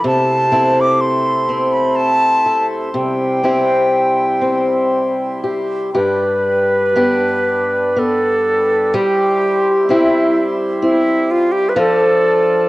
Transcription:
0.00 2.89 C3 medium
0.00 2.89 A3 medium
0.00 0.13 D4 soft
0.00 0.52 E4 soft
0.00 2.89 E4 medium
0.00 0.52 A4 medium
0.00 5.90 C5 medium
0.04 2.93 C3 medium
0.04 0.82 A5 medium
0.52 1.48 C4 soft
0.52 3.44 E4 medium
0.52 2.45 A4 medium
0.81 1.02 D6 medium
1.01 1.74 C6 medium
1.49 3.43 C4 soft
1.72 1.97 B5 medium
1.96 2.67 A5 medium
2.46 3.03 A4 medium
2.91 5.95 C3 medium
2.91 5.90 G3 medium
2.91 5.91 E4 medium
2.95 5.40 G5 medium
3.44 4.40 C4 soft
3.44 6.06 E4 soft
3.44 5.43 G4 medium
4.41 6.05 C4 soft
5.44 5.94 G4 soft
5.94 8.94 G2 medium
5.94 11.72 G3 medium
5.94 8.91 D4 soft
5.94 6.96 G4 medium
5.94 8.91 B4 medium
5.94 8.00 B4 medium
6.96 7.95 B3 soft
6.96 9.04 D4 medium
6.96 8.93 G4 medium
7.96 9.03 B3 soft
7.96 8.97 A4 medium
8.94 11.75 G3 medium
8.94 11.72 E4 medium
8.94 9.88 G4 medium
8.94 9.92 G4 medium
8.94 11.73 C5 medium
9.89 10.82 C4 medium
9.89 11.85 E4 medium
9.89 10.58 E4 medium
9.89 11.76 G4 medium
10.81 12.69 C4 medium
10.81 11.32 E4 medium
11.31 11.53 F4 medium
11.52 11.70 G4 medium
11.69 11.81 B4 medium
11.74 12.69 F3 medium
11.74 12.69 D4 medium
11.74 12.69 A4 medium
11.79 12.69 A4 medium

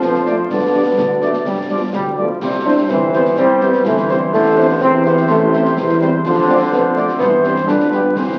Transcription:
0.00 0.43 F2 medium
0.00 0.47 F3 medium
0.00 0.15 B3 medium
0.00 0.46 D4 medium
0.00 0.47 C5 medium
0.00 concert bass drum medium
0.00 snare medium
0.14 snare soft
0.26 0.35 A3 medium
0.26 0.39 A3 medium
0.26 0.35 C4 soft
0.26 0.35 D4 soft
0.26 0.35 D5 medium
0.26 snare soft
0.50 0.90 G2 medium
0.50 0.94 D3 medium
0.50 1.91 B3 medium
0.50 2.14 D4 medium
0.50 2.18 D5 medium
0.50 concert bass drum medium
0.50 snare medium
0.74 0.83 G3 soft
0.74 0.83 B3 soft
0.74 0.83 D4 soft
0.74 0.83 D5 soft
0.98 1.38 D2 medium
0.98 1.10 D3 medium
0.98 concert bass drum medium
0.98 snare medium
1.21 1.30 G3 soft
1.21 1.34 A3 medium
1.21 1.30 B3 soft
1.21 1.31 D4 soft
1.21 1.30 D5 soft
1.21 snare medium
1.33 snare soft
1.45 1.86 G2 medium
1.45 1.56 G3 medium
1.45 concert bass drum medium
1.45 snare medium
1.70 1.82 F3 medium
1.70 1.78 G3 soft
1.70 1.78 B3 soft
1.70 1.78 D4 soft
1.70 1.79 D5 soft
1.93 2.34 D2 medium
1.93 2.16 G3 medium
1.93 concert bass drum medium
1.93 snare medium
2.17 2.42 F3 medium
2.17 2.26 G3 soft
2.17 2.28 A3 medium
2.17 2.26 B3 soft
2.17 2.26 D4 soft
2.17 2.26 D5 medium
2.41 2.82 C2 medium
2.41 2.86 C3 medium
2.41 2.52 G3 medium
2.41 2.87 E4 medium
2.41 2.86 C5 medium
2.41 concert bass drum medium
2.41 snare medium
2.41 crash soft
2.65 2.75 G3 soft
2.65 2.74 C4 medium
2.65 2.90 D4 medium
2.65 2.74 E4 medium
2.65 2.74 C5 medium
2.89 3.29 G1 medium
2.89 3.34 E3 medium
2.89 3.12 C4 medium
2.89 3.34 E4 medium
2.89 3.34 C5 medium
2.89 concert bass drum medium
2.89 snare medium
3.13 3.22 G3 medium
3.13 3.35 B3 medium
3.13 3.22 C4 medium
3.13 3.22 E4 medium
3.13 3.21 C5 medium
3.13 snare soft
3.25 snare medium
3.36 3.78 C2 medium
3.36 3.81 G3 medium
3.36 3.64 C4 loud
3.36 4.29 E4 medium
3.36 4.29 C5 medium
3.36 concert bass drum medium
3.36 snare medium
3.61 3.71 G3 medium
3.61 3.85 B3 medium
3.61 3.70 C4 medium
3.61 3.71 E4 medium
3.61 3.69 C5 medium
3.61 snare soft
3.73 snare soft
3.85 4.25 G1 medium
3.85 4.29 E3 medium
3.85 3.97 A3 medium
3.85 concert bass drum medium
3.85 snare medium
3.97 snare medium
4.09 4.18 G3 medium
4.09 4.21 G3 medium
4.09 4.18 C4 medium
4.09 4.18 E4 medium
4.09 4.18 C5 medium
4.09 snare soft
4.32 4.73 A1 medium
4.32 4.81 D3 medium
4.32 4.67 A3 loud
4.32 4.78 E4 medium
4.32 4.78 C5 medium
4.32 concert bass drum medium
4.32 snare medium
4.57 4.66 C4 medium
4.57 4.66 E4 medium
4.57 4.66 C5 medium
4.69 4.75 B3 medium
4.80 5.21 E2 medium
4.80 6.20 C3 medium
4.80 5.03 C4 loud
4.80 5.26 E4 medium
4.80 5.25 C5 medium
4.80 concert bass drum medium
4.80 snare medium
5.05 5.16 B3 loud
5.05 5.14 C4 medium
5.05 5.14 E4 medium
5.05 5.14 C5 medium
5.05 snare soft
5.17 snare medium
5.28 5.69 A1 medium
5.28 5.73 A3 loud
5.28 6.20 E4 medium
5.28 6.20 C5 medium
5.28 concert bass drum medium
5.28 snare medium
5.53 5.62 C4 medium
5.53 5.62 E4 medium
5.53 5.62 C5 medium
5.53 snare medium
5.65 snare medium
5.77 6.17 E2 medium
5.77 concert bass drum medium
5.77 snare medium
5.89 snare medium
6.00 6.11 G3 loud
6.00 6.10 C4 medium
6.00 6.10 E4 medium
6.00 6.10 C5 medium
6.00 snare soft
6.25 6.65 F2 medium
6.25 7.16 D3 medium
6.25 6.47 F3 medium
6.25 7.16 D4 medium
6.25 7.16 C5 medium
6.25 concert bass drum medium
6.25 snare medium
6.25 crash soft
6.48 6.58 A3 medium
6.48 6.58 C4 loud
6.48 6.58 C4 medium
6.48 6.58 F4 medium
6.48 6.58 D5 medium
6.72 7.12 F2 medium
6.72 6.83 B3 medium
6.72 concert bass drum medium
6.72 snare medium
6.95 7.06 A3 medium
6.95 7.06 C4 medium
6.95 7.06 F4 medium
6.95 7.06 D5 medium
6.95 snare soft
7.08 snare medium
7.19 7.61 G2 medium
7.19 7.68 E3 medium
7.19 7.44 B3 loud
7.19 7.68 E4 medium
7.19 7.65 C5 medium
7.19 concert bass drum medium
7.19 snare medium
7.43 7.53 G3 medium
7.43 7.66 C4 loud
7.43 7.53 C4 medium
7.43 7.53 E4 medium
7.43 7.54 C5 medium
7.43 snare soft
7.56 snare soft
7.66 8.08 G2 medium
7.66 8.12 D3 medium
7.66 7.89 D4 loud
7.66 8.16 F4 medium
7.66 8.16 B4 medium
7.66 concert bass drum medium
7.66 snare medium
7.80 snare soft
7.91 8.01 G3 soft
7.91 8.17 B3 medium
7.91 8.01 B3 medium
7.91 8.01 F4 soft
7.91 8.01 G4 medium
7.91 snare soft
8.15 8.39 C2 medium
8.15 8.39 E3 medium
8.15 8.39 C4 medium
8.15 8.39 E4 medium
8.15 8.39 C5 medium
8.15 concert bass drum medium
8.15 snare medium

